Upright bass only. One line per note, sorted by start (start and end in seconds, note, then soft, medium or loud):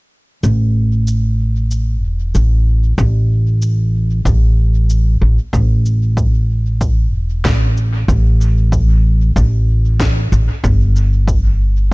0.43 2.03 A1 medium
2.03 2.31 E1 medium
2.35 2.95 A1 medium
2.98 4.23 A1 medium
4.25 5.18 A1 medium
5.21 5.36 A1 medium
5.53 7.13 A1 medium
7.13 7.41 E1 medium
7.45 8.06 A1 medium
8.08 9.33 A1 medium
9.36 10.29 A1 medium
10.32 10.47 A1 medium
10.64 11.94 G1 medium